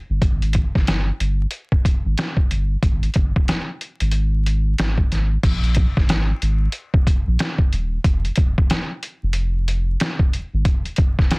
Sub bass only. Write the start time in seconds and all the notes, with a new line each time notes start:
0.10 G1
0.22 G#1
0.76 G1
1.20 G1
2.05 G#1
2.50 G1
2.83 G#1
3.16 G1
4.01 G#1
4.79 G#1
5.11 G#1
5.44 A#1
5.97 G#1
6.42 G#1
7.27 A#1
7.72 D#1
8.05 F1
8.38 D#1
9.23 F1
10.53 G#1